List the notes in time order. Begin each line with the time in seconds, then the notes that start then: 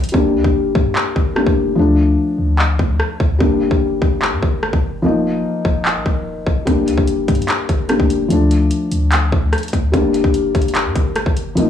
Already playing: D#1
0.04 closed hi-hat
0.09 G3, closed hi-hat
0.14 G1 A#3 D4, kick
0.34 D2
0.44 G1, kick
0.75 G2, kick
0.96 clap
1.16 G1, kick
1.35 G3 A#3 D4, cross-stick
1.47 G1, kick
1.75 D2 F3 A3 D4
2.38 D2
2.59 clap
2.79 D2, kick
3.00 cross-stick
3.20 D2, kick
3.39 G1 G3 A#3 D4, kick
3.71 G1, kick
4.02 G1, kick
4.22 clap
4.32 G2
4.42 G1, kick
4.63 cross-stick
4.73 G1, kick
5.02 D#1 F3 A#3 D#4
5.65 D#1, kick
5.85 clap
5.96 A#1
6.06 D#1, kick
6.47 D#1, kick
6.65 G1 G3 A#3 D4, kick, closed hi-hat
6.87 D2, closed hi-hat
6.97 G1, kick
7.07 closed hi-hat
7.28 G2, kick, closed hi-hat
7.35 closed hi-hat
7.42 closed hi-hat
7.48 clap, closed hi-hat
7.69 G1, kick, closed hi-hat
7.88 G3 A#3 D4, cross-stick, closed hi-hat
8.00 G1, kick
8.10 closed hi-hat
8.28 D2 F3 A3 D4, closed hi-hat
8.51 closed hi-hat
8.71 closed hi-hat
8.91 D2, closed hi-hat
9.12 clap, closed hi-hat
9.32 D2, kick
9.53 cross-stick, closed hi-hat
9.58 closed hi-hat
9.63 closed hi-hat
9.68 closed hi-hat
9.73 D2, kick, closed hi-hat
9.92 G1 G3 A#3 D4, kick, closed hi-hat
10.14 closed hi-hat
10.24 G1, kick
10.34 closed hi-hat
10.55 G1, kick, closed hi-hat
10.62 closed hi-hat
10.68 closed hi-hat
10.75 clap, closed hi-hat
10.85 G2
10.96 G1, kick, closed hi-hat
11.16 cross-stick, closed hi-hat
11.26 G1, kick
11.37 closed hi-hat
11.55 D#1 F3 A#3 D#4, closed hi-hat, riser